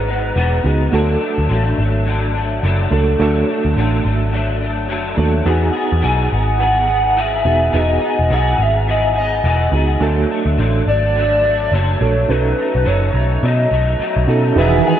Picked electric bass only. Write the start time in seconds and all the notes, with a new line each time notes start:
Already playing: G#1
0.36 E1
0.64 C#2
0.93 D2
1.38 D2
1.50 A1
1.78 G#1
2.63 F#1
2.91 C#2
3.20 D2
3.65 D2
3.76 A1
4.05 G#1
4.90 F#1
5.18 D#2
5.46 E2
5.92 E2
6.04 B1
6.33 G#1
7.45 E1
7.74 E1
8.19 E1
8.30 B1
8.58 G#1
9.44 E1
9.72 C#2
10.01 D2
10.46 D2
10.58 A1
10.86 G#1
11.72 F#1
12.01 A#1
12.29 B1
12.75 B1
12.87 F#1
13.14 B1
13.43 B2
13.71 B1
14.00 muted picked electric bass stroke
14.17 B1
14.28 B2
14.56 E1